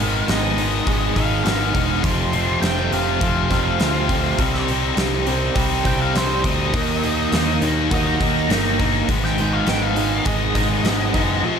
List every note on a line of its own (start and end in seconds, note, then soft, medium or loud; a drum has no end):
0.00 0.21 G#1 medium
0.00 0.26 G#2 medium
0.00 1.16 G#2 medium
0.00 0.26 D#3 medium
0.00 0.27 G#3 medium
0.00 0.27 B3 medium
0.00 0.28 D#4 medium
0.00 0.27 F5 loud
0.27 0.80 G#1 medium
0.27 0.55 G#2 medium
0.27 0.56 D#3 medium
0.27 0.57 G#3 medium
0.27 0.57 B3 loud
0.27 0.57 D#4 medium
0.27 1.15 D#5 medium
0.27 snare loud
0.27 open hi-hat medium
0.56 0.85 G#2 medium
0.56 0.85 D#3 medium
0.56 0.86 G#3 medium
0.56 0.86 B3 loud
0.56 0.87 D#4 medium
0.56 open hi-hat medium
0.86 1.13 G#1 medium
0.86 1.14 G#2 medium
0.86 1.14 D#3 loud
0.86 1.15 G#3 loud
0.86 1.16 B3 loud
0.86 1.16 D#4 loud
0.86 2.04 G#4 medium
0.86 kick loud
0.86 open hi-hat medium
1.15 1.42 G#1 medium
1.15 1.44 G#2 medium
1.15 1.45 D#3 medium
1.15 1.45 G#3 medium
1.15 1.46 B3 medium
1.15 1.46 D#4 medium
1.15 1.43 F5 loud
1.15 kick medium
1.15 open hi-hat medium
1.44 1.71 G#1 medium
1.44 1.72 G#2 medium
1.44 1.72 D#3 medium
1.44 1.73 G#3 medium
1.44 1.74 B3 medium
1.44 1.75 D#4 medium
1.44 2.02 F5 medium
1.44 snare loud
1.44 open hi-hat medium
1.74 2.01 E1 medium
1.74 2.02 G#2 medium
1.74 2.02 D#3 medium
1.74 2.03 G#3 medium
1.74 2.03 B3 medium
1.74 2.03 D#4 medium
1.74 kick medium
1.74 open hi-hat medium
2.03 2.56 F1 medium
2.03 3.50 F2 medium
2.03 2.33 F2 loud
2.03 2.34 C3 loud
2.03 2.32 F3 medium
2.03 2.33 A3 medium
2.03 2.34 C4 loud
2.03 2.33 F4 loud
2.03 2.60 C6 medium
2.03 kick loud
2.03 open hi-hat medium
2.33 2.62 F2 medium
2.33 2.63 C3 medium
2.33 2.61 F3 medium
2.33 2.62 A3 medium
2.33 2.63 C4 medium
2.33 2.63 F4 medium
2.33 open hi-hat medium
2.62 2.88 F1 medium
2.62 2.91 F2 medium
2.62 2.92 C3 medium
2.62 2.91 F3 medium
2.62 2.92 A3 medium
2.62 2.93 C4 loud
2.62 2.92 F4 loud
2.62 2.91 G5 medium
2.62 snare loud
2.62 open hi-hat medium
2.91 3.18 F1 medium
2.91 3.20 F2 medium
2.91 3.21 C3 medium
2.91 3.20 F3 medium
2.91 3.21 A3 medium
2.91 3.21 C4 medium
2.91 3.22 F4 medium
2.91 4.65 F5 medium
2.91 open hi-hat medium
3.21 3.47 F1 medium
3.21 3.50 F2 medium
3.21 3.51 C3 medium
3.21 3.49 F3 medium
3.21 3.50 A3 medium
3.21 3.50 C4 loud
3.21 3.50 F4 medium
3.21 kick loud
3.21 open hi-hat medium
3.50 3.77 F1 medium
3.50 3.80 F2 medium
3.50 3.80 C3 medium
3.50 3.78 F3 medium
3.50 3.79 A3 medium
3.50 3.80 C4 medium
3.50 3.80 F4 medium
3.50 kick medium
3.50 snare soft
3.50 open hi-hat medium
3.80 4.32 D2 medium
3.80 4.09 F2 medium
3.80 4.10 C3 medium
3.80 4.07 F3 medium
3.80 4.08 A3 medium
3.80 4.09 C4 medium
3.80 4.09 F4 medium
3.80 snare loud
3.80 open hi-hat medium
4.08 4.37 F2 medium
4.08 4.38 C3 medium
4.08 4.37 F3 medium
4.08 4.37 A3 medium
4.08 4.38 C4 medium
4.08 4.37 F4 medium
4.08 kick medium
4.08 open hi-hat medium
4.38 4.91 C2 medium
4.38 4.67 C3 medium
4.38 4.68 G3 medium
4.38 4.68 C4 medium
4.38 4.69 D#4 loud
4.38 kick loud
4.38 open hi-hat medium
4.55 snare soft
4.68 4.96 C3 medium
4.68 4.96 G3 medium
4.68 4.97 C4 medium
4.68 4.98 D#4 medium
4.68 open hi-hat medium
4.97 5.49 C2 medium
4.97 5.25 C3 medium
4.97 5.25 G3 medium
4.97 5.26 C4 loud
4.97 5.27 D#4 loud
4.97 snare loud
4.97 open hi-hat medium
5.26 5.55 C3 medium
5.26 5.55 G3 medium
5.26 5.56 C4 medium
5.26 5.57 D#4 medium
5.26 open hi-hat medium
5.55 5.82 C2 medium
5.55 5.85 C3 medium
5.55 5.86 G3 medium
5.55 5.87 C4 loud
5.55 5.88 D#4 loud
5.55 6.73 G4 medium
5.55 kick loud
5.55 open hi-hat medium
5.84 6.11 C2 medium
5.84 6.14 C3 medium
5.84 6.15 G3 medium
5.84 6.15 C4 medium
5.84 6.00 G5 loud
5.84 kick medium
5.84 open hi-hat medium
5.88 6.17 D#4 medium
6.02 6.16 F5 medium
6.15 6.41 C2 medium
6.15 6.43 C3 medium
6.15 6.43 G3 medium
6.15 6.44 C4 medium
6.15 6.46 D#4 medium
6.15 6.44 C5 medium
6.15 snare loud
6.15 open hi-hat medium
6.44 6.70 D2 medium
6.44 6.72 C3 medium
6.44 6.72 G3 medium
6.44 6.73 C4 medium
6.44 6.75 D#4 loud
6.44 7.59 D#5 loud
6.44 kick medium
6.44 open hi-hat medium
6.73 7.26 D#2 medium
6.73 7.02 D#3 medium
6.73 7.02 F#3 loud
6.73 7.03 A#3 loud
6.73 7.04 D#4 loud
6.73 kick loud
6.73 open hi-hat medium
7.03 7.31 D#3 medium
7.03 7.31 F#3 medium
7.03 7.32 A#3 medium
7.03 7.33 D#4 medium
7.03 open hi-hat medium
7.32 7.59 D#2 medium
7.32 7.61 D#3 medium
7.32 7.61 F#3 loud
7.32 7.62 A#3 loud
7.32 7.63 D#4 loud
7.32 snare loud
7.32 open hi-hat medium
7.61 7.88 D#2 medium
7.61 7.89 D#3 medium
7.61 7.90 F#3 medium
7.61 7.91 A#3 medium
7.61 7.91 D#4 loud
7.61 open hi-hat medium
7.90 8.17 D#2 medium
7.90 8.19 D#3 medium
7.90 8.20 F#3 loud
7.90 8.21 A#3 loud
7.90 8.22 D#4 loud
7.90 9.09 F#4 medium
7.90 8.07 D#5 medium
7.90 kick loud
7.90 open hi-hat medium
8.07 9.21 A#5 medium
8.20 8.47 D#2 medium
8.20 8.49 D#3 medium
8.20 8.50 F#3 medium
8.20 8.50 A#3 medium
8.20 8.50 D#4 loud
8.20 kick medium
8.20 open hi-hat medium
8.49 9.02 G1 medium
8.49 8.77 D#3 medium
8.49 8.78 F#3 medium
8.49 8.79 A#3 medium
8.49 8.79 D#4 medium
8.49 snare loud
8.49 open hi-hat medium
8.79 9.07 D#3 medium
8.79 9.07 F#3 medium
8.79 9.08 A#3 loud
8.79 9.08 D#4 medium
8.79 kick medium
8.79 open hi-hat medium
9.08 9.61 G#1 medium
9.08 9.36 G#2 medium
9.08 9.36 D#3 loud
9.08 9.37 G#3 loud
9.08 9.38 B3 loud
9.08 9.38 D#4 loud
9.08 kick loud
9.08 open hi-hat medium
9.25 9.53 G5 medium
9.25 snare soft
9.37 9.65 G#2 medium
9.37 9.65 D#3 medium
9.37 9.66 G#3 medium
9.37 9.66 B3 medium
9.37 9.66 D#4 medium
9.37 open hi-hat medium
9.54 9.68 F5 medium
9.66 10.19 G#1 medium
9.66 9.95 G#2 medium
9.66 9.95 D#3 loud
9.66 9.96 G#3 loud
9.66 9.96 B3 loud
9.66 9.97 D#4 loud
9.66 9.82 G5 medium
9.66 snare loud
9.66 open hi-hat medium
9.82 10.25 F5 medium
9.96 10.24 G#2 medium
9.96 10.25 D#3 loud
9.96 10.25 G#3 loud
9.96 10.26 B3 medium
9.96 10.26 D#4 loud
9.96 open hi-hat medium
10.25 10.52 G#1 loud
10.25 10.54 G#2 medium
10.25 10.54 D#3 loud
10.25 10.55 G#3 loud
10.25 10.55 B3 loud
10.25 10.56 D#4 loud
10.25 11.44 G#4 medium
10.25 11.59 D#5 medium
10.25 kick loud
10.25 open hi-hat medium
10.55 10.82 G#1 medium
10.55 10.83 G#2 medium
10.55 10.83 D#3 medium
10.55 10.84 G#3 medium
10.55 10.84 B3 loud
10.55 10.84 D#4 loud
10.55 kick medium
10.55 snare soft
10.55 open hi-hat medium
10.83 11.10 G#1 medium
10.83 11.12 G#2 medium
10.83 11.13 D#3 medium
10.83 11.14 G#3 loud
10.83 11.14 B3 medium
10.83 11.14 D#4 loud
10.83 snare loud
10.83 open hi-hat medium
11.14 11.41 F#1 medium
11.14 11.42 G#2 medium
11.14 11.42 D#3 medium
11.14 11.43 G#3 medium
11.14 11.43 B3 medium
11.14 11.43 D#4 medium
11.14 kick medium
11.14 open hi-hat medium
11.42 11.59 F2 loud
11.42 11.59 C3 loud
11.42 11.59 F3 loud
11.42 11.59 A3 loud
11.42 11.59 C4 loud
11.42 11.59 F4 loud